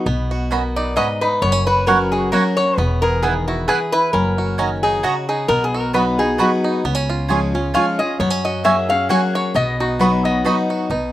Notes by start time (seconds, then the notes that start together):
0.06 B1 B2 B3
0.31 F#4
0.51 A#3 B3 C#4 F#4 D#5 B5
0.76 D#4 D5
0.96 G#2 C#4 F#4 B4 D#5 B5
1.21 D#4 B4
1.42 F#1 F#2 B3 C#5
1.52 C#4
1.67 F#4 B4
1.86 F#3 A#3 C#4 F#4 A#4 C#5 F#5
2.12 F#4 G#4
2.32 F#3 A#3 C#4 F#4 A#4 C#5 F#5
2.57 F#4 C#5
2.77 E1 E2 B3 B4
3.02 G#4 A#4
3.22 D#3 B3 E4 G#4 B4 G#5
3.48 E4 F#4
3.68 E3 B3 E4 G#4 B4 G#5
3.92 E4 B4
4.13 F#1 F#3 C#4 A#4
4.38 F#4
4.58 D#3 C#4 F#4 D#5 A#5
4.83 D#4 G#4
5.03 C#3 C#4 F#4 D#5 A#5
5.29 D#4 G#4
5.48 B1 B2 B3 A#4
5.64 G#4
5.74 F#4
5.79 A#4
5.93 F#3 B3 D#4 F#4 B4 D#5 B5
6.18 D#4 F#4 G#4
6.38 F#3 B3 D#4 F#4 B4 D#5 B5
6.64 D#4
6.84 C#2 C#3 B3
6.95 C#4
7.10 F4
7.29 F3 G#3 C#4 F4 G#4 C#5 G#5
7.54 C#4 F4
7.74 F3 G#3 C#4 F4 C#5 F5 G#5
7.99 C#4 F4 G#4 D#5
8.20 F#2 F#3 B3 C#5
8.30 C#4
8.45 F#4 D#5
8.64 F#3 A#3 C#4 F#4 G#4 C#5 E5 G#5
8.89 C#4 F#4 G#4 F5
9.09 F#3 A#3 C#4 F#4 G#4 C#5 F#5 G#5
9.35 F#4 C#5
9.54 B1 B2 B3 D#5
9.80 D#4 F#4
9.99 F#3 B3 D#4 F#4 B4 D#5 B5
10.25 B3 D#5
10.44 F#3 B3 D#4 F#4 D#5 B5
10.70 F#4
10.90 B1 B2 D#4